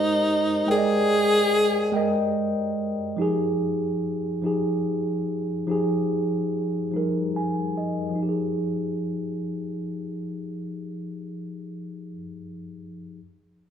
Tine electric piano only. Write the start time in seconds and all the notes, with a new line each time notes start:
Already playing: G#3 G4 A#4 C5
0.67 G#3 A#4 G5
0.71 D5
0.78 D#5
1.92 G#3 A#4 G5
1.97 D#5
3.17 F3 D#4 G4
3.22 G#4
4.42 F3 D#4 G4
4.46 G#4
5.67 F3 D#4 G4
5.72 G#4
6.92 F3 G3 D#4
6.96 A#4
7.36 G#5
7.77 D#5
8.09 F3
8.15 D#4
8.23 G4
8.29 G#4